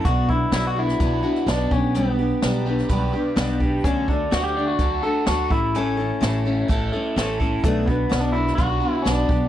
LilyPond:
<<
  \new Staff \with { instrumentName = "Overdriven electric guitar" } { \time 4/4 \key b \minor \tempo 4 = 126 b,4 fis'8 d'8 b'8 fis'8 b'8 b8 | b4 g'8 d'8 b'8 g'8 b'8 g'8 | d4 fis'8 d'8 a'8 fis'8 a'8 a,8 | a,4 e'8 cis'8 a'8 e'8 a'8 e'8 |
b,4 fis'8 d'8 b'8 fis'8 b'8 b8 | }
  \new Staff \with { instrumentName = "Clean electric guitar" } { \time 4/4 \key b \minor fis'8 e'8 e'16 fis'16 e'4. d'8 cis'8 | b2 r2 | cis'8 d'8 fis'16 g'8 fis'8. a'8 fis'8 e'8 | cis'2 r2 |
a8 b8. d'16 e'8 fis'4 d'4 | }
  \new Staff \with { instrumentName = "Steel-string acoustic guitar" } { \time 4/4 \key b \minor <b, fis b d' fis'>8 <b d' fis'>8 <b, fis b d' fis'>8 <b d' fis'>8 <fis b d' fis'>8 <b d' fis'>8 <b, fis b d' fis'>8 <b d' g'>8 | <b, g b d' g'>8 <b d' g'>8 <b, g b d' g'>8 <b d' g'>8 <g b d' g'>8 <b d' g'>8 <b, g b d' g'>8 <b d' g'>8 | <d fis a d' fis'>8 <a d' fis'>8 <d fis a d' fis'>8 <a d' fis'>8 <fis a d' fis'>8 <a d' fis'>8 <d fis a d' fis'>8 <a cis' e' a'>8 | <a, e a cis' e' a'>8 <a cis' e' a'>8 <a, e a cis' e' a'>8 <a cis' e' a'>8 <a cis' e' a'>8 <a cis' e' a'>8 <a, e a cis' e' a'>8 <a cis' e' a'>8 |
<b, fis b d' fis'>8 <b d' fis'>8 <b, fis b d' fis'>8 <b d' fis'>8 <fis b d' fis'>8 <b d' fis'>8 <b, fis b d' fis'>8 <b d' g'>8 | }
  \new Staff \with { instrumentName = "Upright bass" } { \clef bass \time 4/4 \key b \minor b,,4 b,,4 b,,8 r8 b,,8 b,,8~ | b,,4 b,,4 b,,8 r8 b,,4 | d,4 d,4 d,8 r8 d,8 a,,8~ | a,,4 a,,4 a,,8 r8 a,,4 |
b,,4 b,,4 b,,8 r8 b,,8 b,,8 | }
  \new DrumStaff \with { instrumentName = "Drums" } \drummode { \time 4/4 <hh bd>8 bd8 <hh sn>8. sn16 <hh bd>8. sn16 <hh sn>8 bd8 | hh4 <hh sn>8. sn16 <hh bd>4 <hh sn>8 bd8 | <hh bd>8 bd8 <hh sn>4 <hh bd>4 <hh sn>8 bd8 | hh4 <hh sn>4 <hh bd>4 <hh sn>8 bd8 |
<hh bd>8 bd8 <hh sn>8. sn16 <hh bd>4 <hh sn>8 bd8 | }
>>